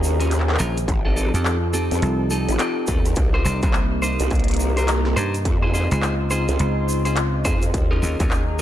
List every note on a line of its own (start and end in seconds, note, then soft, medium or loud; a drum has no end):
0.00 0.58 D#2 loud
0.00 0.86 D#3 medium
0.00 0.16 C#4 medium
0.00 0.86 C#4 medium
0.00 0.16 F4 medium
0.00 0.16 G#4 medium
0.00 0.86 G#4 loud
0.00 0.88 G#4 medium
0.00 0.16 A#4 medium
0.00 0.89 A#5 medium
0.00 shaker loud
0.20 0.31 C#4 medium
0.20 0.31 F4 medium
0.20 0.31 G#4 medium
0.20 0.31 A#4 medium
0.20 closed hi-hat medium
0.20 shaker soft
0.31 clap medium
0.31 closed hi-hat medium
0.31 shaker soft
0.40 clap medium
0.49 clap medium
0.49 snare medium
0.55 clap loud
0.59 0.87 A#1 loud
0.59 0.77 C#4 medium
0.59 0.77 F4 medium
0.59 0.77 G#4 loud
0.59 0.77 A#4 loud
0.59 closed hi-hat medium
0.59 shaker medium
0.77 closed hi-hat medium
0.77 shaker medium
0.88 1.32 A1 loud
0.88 3.14 F3 medium
0.88 5.46 C4 medium
0.88 7.70 D#4 medium
0.88 3.15 A4 loud
0.88 kick loud
0.88 closed hi-hat medium
0.88 shaker soft
0.97 4.10 F4 medium
1.02 1.15 D#4 medium
1.02 1.15 G4 medium
1.02 1.15 A4 medium
1.02 8.62 D#5 medium
1.07 1.15 C4 medium
1.16 1.32 C4 medium
1.16 1.32 D#4 medium
1.16 1.32 G4 medium
1.16 1.32 A4 loud
1.16 closed hi-hat soft
1.16 shaker medium
1.24 3.17 A5 medium
1.34 1.89 F2 loud
1.34 1.56 C4 medium
1.34 1.56 D#4 medium
1.34 1.56 G4 medium
1.34 1.56 A4 medium
1.34 closed hi-hat medium
1.34 shaker medium
1.45 clap loud
1.45 shaker soft
1.74 2.29 C4 medium
1.74 2.29 D#4 medium
1.74 2.29 G4 medium
1.74 2.29 A4 medium
1.74 closed hi-hat soft
1.74 shaker loud
1.91 2.01 F2 loud
1.91 closed hi-hat medium
1.91 shaker medium
2.02 2.46 C2 loud
2.02 closed hi-hat medium
2.02 shaker soft
2.30 2.56 C4 medium
2.30 2.56 D#4 medium
2.30 2.56 G4 medium
2.30 2.56 A4 medium
2.30 shaker medium
2.49 2.58 A1 loud
2.49 closed hi-hat medium
2.49 shaker medium
2.59 2.86 C4 loud
2.59 2.86 D#4 medium
2.59 2.86 G4 medium
2.59 2.86 A4 medium
2.59 clap loud
2.59 closed hi-hat medium
2.59 shaker soft
2.87 3.15 D#2 loud
2.87 3.06 C4 medium
2.87 3.06 D#4 medium
2.87 3.06 G4 medium
2.87 3.06 A4 medium
2.87 kick loud
2.87 closed hi-hat medium
2.87 shaker medium
3.05 closed hi-hat medium
3.05 shaker medium
3.15 3.44 C2 loud
3.15 5.43 C3 medium
3.15 5.43 A#3 medium
3.15 kick loud
3.15 closed hi-hat medium
3.15 shaker soft
3.34 3.44 D#4 medium
3.34 3.44 G4 medium
3.34 3.44 A#4 medium
3.34 3.44 C5 medium
3.34 clap soft
3.44 3.60 C2 medium
3.44 3.60 D#4 medium
3.44 6.25 G4 medium
3.44 3.60 G4 medium
3.44 3.60 A#4 medium
3.44 3.60 C5 loud
3.44 shaker medium
3.62 4.17 C2 loud
3.62 3.85 D#4 medium
3.62 3.85 G4 medium
3.62 3.85 A#4 medium
3.62 3.85 C5 medium
3.62 kick loud
3.62 closed hi-hat medium
3.62 shaker soft
3.73 clap loud
3.73 shaker soft
3.95 6.39 A#5 medium
4.02 4.73 D#4 medium
4.02 4.73 G4 medium
4.02 4.73 A#4 medium
4.02 4.73 C5 medium
4.02 shaker medium
4.20 4.29 C2 loud
4.20 closed hi-hat medium
4.20 shaker medium
4.30 5.15 C2 loud
4.30 kick loud
4.30 closed hi-hat soft
4.30 shaker soft
4.35 closed hi-hat soft
4.40 closed hi-hat soft
4.44 closed hi-hat soft
4.48 closed hi-hat soft
4.51 closed hi-hat medium
4.54 closed hi-hat medium
4.57 closed hi-hat medium
4.57 shaker loud
4.77 4.89 D#4 medium
4.77 4.89 G4 medium
4.77 4.89 A#4 medium
4.77 4.89 C5 medium
4.77 closed hi-hat medium
4.77 shaker medium
4.88 clap loud
4.88 closed hi-hat medium
4.88 shaker soft
5.06 snare soft
5.16 5.44 G2 loud
5.16 5.35 D#4 medium
5.16 5.35 G4 medium
5.16 5.35 A#4 medium
5.16 5.35 C5 loud
5.16 closed hi-hat medium
5.16 shaker medium
5.34 closed hi-hat soft
5.34 shaker medium
5.45 5.89 F2 loud
5.45 7.72 C#3 medium
5.45 7.72 C4 medium
5.45 7.72 F4 loud
5.45 kick loud
5.45 closed hi-hat medium
5.45 shaker soft
5.62 5.72 D#4 medium
5.62 5.72 F4 medium
5.62 5.72 G#4 medium
5.62 5.72 C5 medium
5.70 8.62 F4 medium
5.70 5.89 C5 loud
5.74 5.89 D#4 medium
5.74 5.89 F4 medium
5.74 5.89 G#4 medium
5.74 shaker medium
5.86 8.62 C6 medium
5.91 6.46 C#2 loud
5.91 6.14 D#4 medium
5.91 6.14 F4 medium
5.91 6.14 G#4 medium
5.91 6.14 C5 medium
5.91 closed hi-hat medium
5.91 shaker medium
6.02 clap loud
6.02 shaker soft
6.31 7.02 D#4 medium
6.31 7.02 F4 medium
6.31 7.02 G#4 medium
6.31 7.02 C5 medium
6.31 shaker medium
6.48 6.58 C#2 loud
6.48 closed hi-hat medium
6.48 shaker soft
6.59 7.44 C#2 loud
6.59 closed hi-hat medium
6.59 shaker soft
6.89 shaker medium
7.05 7.17 D#4 medium
7.05 7.17 F4 medium
7.05 7.17 G#4 medium
7.05 7.17 C5 medium
7.05 closed hi-hat medium
7.05 shaker soft
7.16 clap loud
7.16 closed hi-hat medium
7.16 shaker soft
7.45 7.72 F2 medium
7.45 7.63 D#4 medium
7.45 7.63 F4 medium
7.45 7.63 G#4 medium
7.45 7.63 C5 loud
7.45 kick loud
7.45 closed hi-hat medium
7.45 shaker medium
7.62 closed hi-hat medium
7.62 shaker medium
7.73 8.01 D#2 loud
7.73 8.62 D#3 medium
7.73 8.62 C#4 medium
7.73 8.62 G#4 loud
7.73 kick loud
7.73 closed hi-hat medium
7.73 shaker soft
7.91 8.01 C#4 medium
7.91 8.01 F4 medium
7.91 8.01 G#4 medium
7.91 8.01 A#4 medium
7.91 clap soft
8.00 8.17 D#2 medium
8.00 8.17 C#4 medium
8.00 8.17 F4 medium
8.00 8.62 G#4 medium
8.00 8.17 G#4 medium
8.00 8.17 A#4 loud
8.00 8.62 A#5 medium
8.00 shaker medium
8.19 8.62 D#2 loud
8.19 8.42 C#4 medium
8.19 8.42 F4 medium
8.19 8.42 G#4 medium
8.19 8.42 A#4 medium
8.19 kick loud
8.19 closed hi-hat medium
8.19 shaker soft
8.31 clap loud
8.31 shaker soft